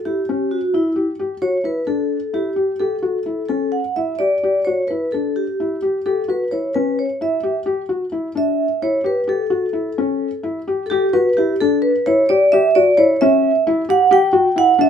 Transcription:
0.05 felt piano E4, vibraphone G4
0.29 felt piano C#4
0.51 vibraphone F#4
0.74 felt piano E4, vibraphone E4
0.96 felt piano G4
1.19 felt piano G4
1.42 felt piano F#4, vibraphone C#5
1.64 felt piano E4, vibraphone B4
1.87 felt piano D4, vibraphone A4
2.34 felt piano E4, vibraphone G4
2.56 felt piano G4
2.80 felt piano G4, vibraphone A4
3.03 felt piano F#4
3.26 felt piano E4
3.49 felt piano C#4, vibraphone A4
3.72 vibraphone F#5
3.96 felt piano E4, vibraphone E5
4.19 felt piano G4, vibraphone D5
4.43 felt piano G4
4.65 felt piano F#4, vibraphone C#5
4.88 felt piano E4, vibraphone B4
5.12 felt piano D4, vibraphone A4
5.36 vibraphone G4
5.60 felt piano E4
5.82 felt piano G4
6.06 felt piano G4, vibraphone A4
6.28 felt piano F#4, vibraphone B4
6.51 felt piano E4, vibraphone C#5
6.75 felt piano C#4, vibraphone B4
6.99 vibraphone C#5
7.21 felt piano E4, vibraphone E5
7.43 felt piano G4
7.66 felt piano G4
7.89 felt piano F#4
8.12 felt piano E4
8.35 felt piano D4, vibraphone E5
8.82 felt piano E4, vibraphone C#5
9.04 felt piano G4, vibraphone B4
9.28 felt piano G4, vibraphone A4
9.50 felt piano F#4
9.73 felt piano E4
9.98 felt piano C#4
10.43 felt piano E4
10.68 felt piano G4
10.86 vibraphone G4 A4
10.91 felt piano G4
11.13 felt piano F#4, vibraphone B4
11.37 felt piano E4, vibraphone G4
11.61 felt piano D4, vibraphone A4
11.82 vibraphone B4
12.06 felt piano E4, vibraphone C#5
12.29 felt piano G4, vibraphone D5
12.52 felt piano G4, vibraphone E5
12.75 felt piano F#4, vibraphone D5
12.98 felt piano E4, vibraphone C#5
13.21 felt piano C#4, vibraphone E5
13.67 felt piano E4
13.89 felt piano G4, vibraphone F#5
14.11 felt piano G4, vibraphone G5
14.33 felt piano F#4
14.56 felt piano E4, vibraphone F#5
14.79 felt piano D4, vibraphone E5

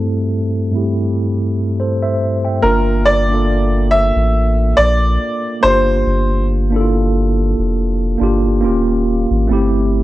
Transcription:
Already playing: tine electric piano G2 A3 C4 E4 A4
0.71 tine electric piano G2 A3 C4 E4
0.77 tine electric piano G4
1.80 tine electric piano A4 C5
2.03 tine electric piano C5 E5
2.45 tine electric piano E5 G5
2.61 sub bass G1, tine electric piano A#3 D4 F4, upright piano A#4
2.67 tine electric piano A#4
3.06 upright piano D5
3.29 tine electric piano A#3 D4 F4
3.34 tine electric piano A4
3.91 upright piano E5
4.16 sub bass A1
4.77 sub bass A#1, upright piano D5
5.61 sub bass G1, tine electric piano A#3 D4 F4, upright piano C5
5.67 tine electric piano G4
6.06 sub bass G1
6.70 tine electric piano A#3 D4 E4
6.76 tine electric piano A4
6.81 tine electric piano F4
7.59 sub bass F1
8.18 sub bass G1, tine electric piano A#3 D4 F4
8.23 tine electric piano G4
8.61 sub bass D#1, tine electric piano A#3 C#4 F4
8.66 tine electric piano G4
9.30 sub bass G#1
9.48 sub bass G1, tine electric piano A3 C4 E4
9.53 tine electric piano G4

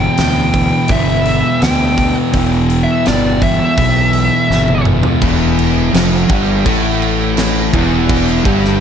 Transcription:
Already playing: distorted electric guitar E2 B2 E3, synth drone E4 B4 G5, lead electric guitar G5
0.18 fingered electric bass D2, snare, open hi-hat
0.53 distorted electric guitar E2 B2 E3, kick, open hi-hat
0.88 fingered electric bass G1, distorted electric guitar E2 B2, lead electric guitar E5, kick, open hi-hat
0.92 distorted electric guitar E3
1.26 open hi-hat
1.60 fingered electric bass D2, distorted electric guitar E2 B2 E3, lead electric guitar G5, snare, open hi-hat
1.98 kick, open hi-hat
2.33 fingered electric bass E1, distorted electric guitar E2 B2 E3, synth drone A4, kick, open hi-hat
2.70 open hi-hat
2.84 lead electric guitar E5
3.06 fingered electric bass G1, lead electric guitar D5, snare, open hi-hat
3.39 distorted electric guitar E2 B2 E3, lead electric guitar E5, kick, open hi-hat
3.78 fingered electric bass B1, distorted electric guitar E2 B2 E3, kick, open hi-hat
4.13 open hi-hat
4.49 fingered electric bass G1, distorted electric guitar E2 B2 E3, snare
4.68 high tom
4.85 mid tom
5.03 floor tom
5.20 fingered electric bass E1, distorted electric guitar E2 E3, synth drone E4 G4 F#5, kick, crash
5.59 crash
5.92 fingered electric bass F1, distorted electric guitar F2 F3, snare, crash
6.29 fingered electric bass G1, distorted electric guitar G2 G3, kick, crash
6.66 fingered electric bass A1, distorted electric guitar A2 A3, kick, crash
7.02 crash
7.37 snare, crash
7.72 fingered electric bass E1, distorted electric guitar E2 E3, kick, crash
8.09 synth drone G5, kick, crash
8.45 fingered electric bass G1, distorted electric guitar G2 G3, kick, crash
8.65 snare

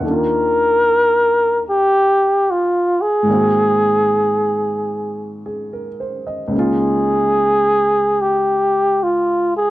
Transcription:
Already playing: grand piano F#5
0.01 grand piano D#2 D#3
0.05 grand piano A#3 D4, flugelhorn A#4
0.11 grand piano F4
1.70 flugelhorn G4
2.51 flugelhorn F4
3.02 flugelhorn G#4
3.23 grand piano G#2 D#3
3.28 grand piano A#3 C4
3.34 grand piano F#4
5.46 grand piano G#4
5.73 grand piano A#4
6.00 grand piano C5
6.27 grand piano D#5
6.48 grand piano C#2 C#3
6.53 grand piano A#3 D#4
6.59 grand piano F4, flugelhorn G#4
8.21 flugelhorn G4
9.04 flugelhorn F4
9.57 flugelhorn G#4

